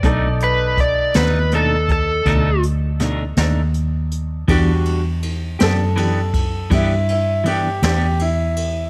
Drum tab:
RD |------------|xxxxxxxxxxxx|
HH |xxxxxxxxxxxx|------------|
SD |---o----oo--|---o-----o--|
BD |o-o--oo-----|o----oo-----|